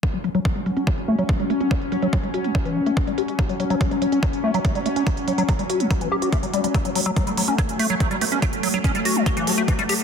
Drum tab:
HH |xxxxxxxxxx-xxxxx|xxxxxxxxxx-xxxxx|xxxxxxxxxx-xxxxx|xxxxxxxxxx-xxxxx|
BD |o---o---o---o---|o---o---o---o---|o---o---o---o---|o---o---o---o---|

HH |xxoxxxoxxxoxxxox|xxoxxxoxxxoxxxox|
BD |o---o---o---o---|o---o---o---o---|